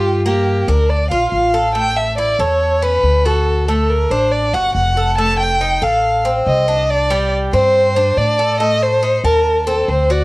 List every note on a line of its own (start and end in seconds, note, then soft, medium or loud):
0.00 0.62 G2 medium
0.00 0.24 F4 medium
0.00 0.23 G4 medium
0.26 0.67 A#3 medium
0.26 0.70 G4 medium
0.68 1.08 D2 medium
0.68 1.10 D4 medium
0.68 0.91 A#4 medium
0.90 1.10 D5 medium
1.11 1.31 A#1 medium
1.11 1.53 F4 medium
1.11 1.31 F5 medium
1.32 2.33 A1 medium
1.32 1.72 F5 medium
1.54 1.75 A4 medium
1.75 2.17 A3 medium
1.75 1.98 G5 loud
1.97 2.18 E5 medium
2.18 2.39 E4 medium
2.18 2.41 D5 medium
2.39 2.99 E2 medium
2.39 2.81 A4 medium
2.39 2.84 C#5 medium
2.82 3.24 C#4 medium
2.82 3.26 B4 loud
3.03 4.04 D2 medium
3.25 3.67 F#4 medium
3.25 3.68 A4 medium
3.68 4.10 A3 medium
3.68 3.91 A4 medium
3.90 4.13 A#4 medium
4.10 4.50 A1 medium
4.10 4.53 D4 medium
4.10 4.34 C5 medium
4.32 4.55 D5 medium
4.53 4.73 G1 medium
4.53 4.95 F#4 medium
4.53 4.75 F#5 medium
4.75 5.76 F1 medium
4.75 5.15 F#5 medium
4.97 5.17 A4 medium
5.18 5.60 A3 medium
5.18 5.38 A5 loud
5.40 5.84 G5 medium
5.61 5.81 D#4 medium
5.82 6.42 A1 medium
5.82 6.23 A4 medium
5.82 6.25 F5 medium
6.25 6.66 C4 medium
6.46 7.47 C2 medium
6.46 6.91 D#5 medium
6.68 7.09 D4 medium
6.90 7.32 D5 medium
7.10 7.52 G3 medium
7.53 8.13 G2 medium
7.53 7.95 C4 medium
7.53 8.19 C5 loud
7.96 8.38 D4 medium
8.17 9.18 A2 medium
8.17 8.60 D5 medium
8.39 8.60 A4 medium
8.60 9.02 A3 medium
8.60 8.84 D#5 loud
8.82 9.24 C5 medium
9.03 9.23 D#4 medium
9.24 9.84 D#2 medium
9.24 9.64 A#4 loud
9.24 9.66 A5 medium
9.67 10.08 C4 medium
9.67 9.90 A4 medium
9.88 10.24 D2 medium
9.88 10.12 C5 medium
10.10 10.24 F#4 medium
10.10 10.24 D5 medium